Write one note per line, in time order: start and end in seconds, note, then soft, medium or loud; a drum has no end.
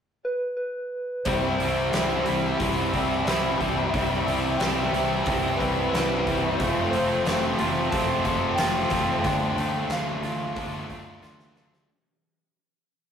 0.25 0.56 B4 medium
0.57 1.26 B4 medium
1.25 1.57 C2 medium
1.25 1.93 C3 medium
1.25 1.94 E3 medium
1.25 1.63 G3 medium
1.25 1.61 C4 medium
1.25 1.60 E4 loud
1.25 1.57 C5 medium
1.25 kick loud
1.25 open hi-hat medium
1.57 1.91 C2 medium
1.57 1.94 C3 medium
1.57 1.95 E4 medium
1.57 2.58 C5 loud
1.57 open hi-hat medium
1.62 1.94 G3 medium
1.62 1.94 C4 medium
1.93 2.25 C2 medium
1.93 2.60 C3 medium
1.93 2.59 E3 medium
1.93 2.29 G3 medium
1.93 2.28 C4 medium
1.93 2.26 E4 medium
1.93 snare loud
1.93 open hi-hat medium
2.26 2.59 C2 medium
2.26 2.59 C3 medium
2.26 2.60 G3 medium
2.26 2.62 C4 medium
2.26 2.62 E4 medium
2.26 open hi-hat medium
2.57 2.91 C2 medium
2.57 3.25 C3 medium
2.57 3.26 E3 medium
2.57 3.26 E5 loud
2.57 kick loud
2.57 open hi-hat medium
2.61 2.95 G3 medium
2.61 2.94 C4 medium
2.61 2.92 E4 loud
2.93 3.25 C2 medium
2.93 3.26 C3 medium
2.93 3.26 G3 medium
2.93 3.28 C4 medium
2.93 3.28 E4 medium
2.93 kick medium
2.93 open hi-hat medium
3.25 3.58 C2 medium
3.25 3.93 C3 medium
3.25 3.93 E3 medium
3.25 3.62 G3 medium
3.25 3.62 C4 medium
3.25 3.91 D5 medium
3.25 snare loud
3.25 open hi-hat medium
3.29 3.60 E4 medium
3.59 3.92 C2 medium
3.59 3.92 C3 medium
3.59 3.96 E4 medium
3.59 kick medium
3.59 open hi-hat medium
3.63 3.94 G3 medium
3.63 3.96 C4 medium
3.89 4.59 E5 loud
3.94 4.26 C2 medium
3.94 4.61 C3 medium
3.94 4.58 E3 medium
3.94 4.30 G3 medium
3.94 4.30 C4 loud
3.94 4.28 E4 loud
3.94 kick loud
3.94 open hi-hat medium
4.26 4.58 C2 medium
4.26 4.59 C3 medium
4.26 4.63 C4 medium
4.26 4.63 E4 medium
4.26 open hi-hat medium
4.31 4.61 G3 medium
4.57 4.92 C2 medium
4.57 5.25 E3 medium
4.57 5.58 G5 loud
4.57 snare loud
4.57 open hi-hat medium
4.62 5.27 C3 medium
4.62 4.96 G3 medium
4.62 4.96 C4 medium
4.62 4.94 E4 medium
4.93 5.25 C2 medium
4.93 5.26 C3 medium
4.93 5.29 C4 medium
4.93 5.30 E4 medium
4.93 snare soft
4.93 open hi-hat medium
4.98 5.29 G3 medium
5.26 5.58 C2 medium
5.26 5.93 C3 medium
5.26 5.92 E3 medium
5.26 5.64 G3 medium
5.26 kick loud
5.26 open hi-hat medium
5.30 5.63 C4 medium
5.30 5.61 E4 loud
5.57 5.91 C2 medium
5.57 5.91 C3 medium
5.57 5.91 G3 medium
5.57 5.92 C4 medium
5.57 5.87 B4 medium
5.57 kick medium
5.61 5.94 G3 medium
5.61 5.95 C4 medium
5.61 5.96 E4 medium
5.61 open hi-hat soft
5.88 6.56 C2 medium
5.88 6.56 B4 medium
5.93 6.58 C3 medium
5.93 6.57 E3 medium
5.93 6.29 G3 medium
5.93 6.28 C4 medium
5.93 snare loud
5.93 open hi-hat medium
5.97 6.26 E4 medium
6.26 6.57 C3 medium
6.26 6.59 C4 medium
6.26 6.58 E4 medium
6.26 kick medium
6.26 open hi-hat medium
6.30 6.60 G3 medium
6.55 6.90 C5 loud
6.59 6.91 F1 medium
6.59 7.59 F2 medium
6.59 6.93 F2 medium
6.59 7.59 C3 medium
6.59 6.93 C3 medium
6.59 7.28 F3 loud
6.59 6.98 A3 loud
6.59 kick loud
6.59 open hi-hat medium
6.59 tambourine medium
6.63 6.96 C4 loud
6.63 6.95 F4 loud
6.91 7.24 F1 medium
6.91 7.27 F2 medium
6.91 7.27 C3 medium
6.91 7.91 C5 loud
6.91 open hi-hat medium
6.91 tambourine medium
6.95 7.28 F3 medium
6.95 7.29 A3 medium
6.95 7.29 C4 medium
6.95 7.30 F4 medium
7.25 7.57 F1 medium
7.25 7.60 F2 medium
7.25 7.60 C3 loud
7.25 7.93 F3 medium
7.25 snare loud
7.25 open hi-hat medium
7.25 tambourine medium
7.29 7.64 A3 medium
7.29 7.62 C4 medium
7.29 7.62 F4 medium
7.59 7.91 F1 medium
7.59 7.91 F2 medium
7.59 7.92 C3 medium
7.59 7.94 F3 medium
7.59 7.96 F4 medium
7.59 open hi-hat medium
7.64 7.95 A3 medium
7.64 7.95 C4 medium
7.89 8.24 F1 medium
7.89 8.25 F2 loud
7.89 8.26 C3 loud
7.89 8.57 A5 loud
7.89 kick loud
7.89 open hi-hat medium
7.94 8.60 F3 medium
7.94 8.29 A3 medium
7.94 8.27 C4 medium
7.94 8.27 F4 loud
8.25 8.56 F1 medium
8.25 8.58 F2 medium
8.25 8.58 C3 medium
8.25 8.58 F3 medium
8.25 8.59 F3 medium
8.25 8.61 C4 medium
8.25 8.62 F4 medium
8.25 kick medium
8.25 open hi-hat medium
8.25 tambourine medium
8.29 8.61 A3 medium
8.55 8.90 F1 medium
8.55 8.91 F2 medium
8.55 9.23 G5 loud
8.55 snare loud
8.55 open hi-hat medium
8.55 tambourine medium
8.59 8.92 C3 medium
8.59 9.25 F3 medium
8.59 8.95 A3 medium
8.59 8.93 C4 medium
8.59 8.93 F4 medium
8.90 9.22 F1 medium
8.90 9.23 F2 medium
8.90 9.23 C3 medium
8.90 9.26 F3 medium
8.90 9.28 F4 medium
8.90 kick medium
8.90 open hi-hat medium
8.90 tambourine medium
8.94 9.24 F3 medium
8.94 9.27 A3 medium
8.94 9.24 C4 medium
9.24 9.55 D2 loud
9.24 9.90 D3 loud
9.24 10.89 F3 medium
9.24 9.60 A3 loud
9.24 9.94 G5 loud
9.24 kick loud
9.24 open hi-hat medium
9.24 tambourine medium
9.28 9.59 D4 loud
9.28 9.57 F4 loud
9.57 9.88 D2 medium
9.57 9.90 D3 medium
9.57 9.92 A3 medium
9.57 9.93 D4 medium
9.57 9.93 F4 medium
9.57 open hi-hat medium
9.57 tambourine medium
9.89 10.21 D2 medium
9.89 10.56 D3 medium
9.89 11.23 F5 loud
9.89 snare loud
9.89 open hi-hat medium
9.89 tambourine medium
9.93 10.26 A3 medium
9.93 10.25 D4 medium
9.93 10.23 F4 medium
10.21 10.54 D2 medium
10.21 10.55 D3 medium
10.21 10.58 F4 medium
10.21 snare soft
10.21 open hi-hat medium
10.21 tambourine soft
10.26 10.57 A3 medium
10.26 10.57 D4 medium
10.56 10.88 D2 medium
10.56 11.23 D3 medium
10.56 10.92 A3 medium
10.56 10.91 D4 medium
10.56 10.90 F4 loud
10.56 kick loud
10.56 open hi-hat medium
10.56 tambourine soft
10.88 11.21 D2 medium
10.88 11.20 D3 medium
10.88 11.21 A3 medium
10.88 11.25 F4 medium
10.88 kick medium
10.88 open hi-hat soft
10.88 tambourine medium
10.92 11.24 A3 medium
10.92 11.25 D4 medium
11.22 11.85 D2 medium
11.22 11.87 D3 medium
11.22 11.58 A3 medium
11.22 11.57 D4 medium
11.22 11.88 F4 medium
11.22 snare medium
11.22 tambourine medium
11.26 11.56 F4 medium
11.40 snare medium
11.56 11.86 D3 medium
11.56 11.88 A3 medium
11.56 11.88 D4 medium
11.56 11.87 F4 medium
11.56 snare medium
11.56 tambourine medium
11.73 snare medium